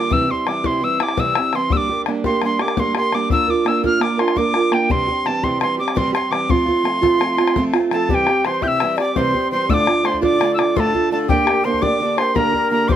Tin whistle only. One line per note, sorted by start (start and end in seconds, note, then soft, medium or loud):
0.00 0.14 D6 medium
0.12 0.32 E6 loud
0.31 0.49 C6 medium
0.48 0.67 D6 medium
0.66 0.85 C6 loud
0.84 1.04 E6 medium
1.02 1.21 D6 medium
1.19 1.57 E6 loud
1.55 1.74 C6 medium
1.72 1.78 E6 loud
1.77 2.02 D6 loud
2.26 2.41 C6 medium
2.45 2.63 C6 medium
2.61 2.81 D6 medium
2.79 2.96 C6 medium
2.97 3.16 C6 loud
3.14 3.31 D6 medium
3.32 3.51 E6 loud
3.50 3.69 D6 loud
3.67 3.84 E6 medium
3.85 4.03 F6 loud
4.02 4.21 D6 medium
4.20 4.39 C6 medium
4.37 4.74 D6 loud
4.73 4.92 G5 medium
4.91 5.28 C6 loud
5.26 5.45 A5 medium
5.44 5.61 C6 medium
5.61 5.78 C6 medium
5.79 5.92 D6 medium
5.92 5.99 D6 medium
5.97 6.14 C6 medium
6.14 6.33 C6 medium
6.31 6.52 D6 medium
6.50 7.64 C6 loud
7.92 8.10 A5 medium
8.10 8.15 A5 medium
8.14 8.47 G5 loud
8.45 8.64 C6 medium
8.63 8.68 G6 medium
8.67 8.98 E6 loud
8.99 9.18 D6 medium
9.17 9.51 C6 medium
9.51 9.71 C6 medium
9.70 10.07 D6 loud
9.70 9.74 E6 loud
10.06 10.22 C6 medium
10.23 10.52 D6 loud
10.54 10.60 E6 medium
10.59 10.78 D6 medium
10.76 11.11 A5 medium
10.76 10.81 C6 medium
11.12 11.18 A5 medium
11.29 11.66 G5 loud
11.64 11.83 C6 medium
11.82 12.19 D6 loud
12.18 12.37 C6 medium
12.35 12.70 A#5 loud
12.71 12.89 A#5 medium
12.88 12.93 D6 loud
12.92 12.96 C6 loud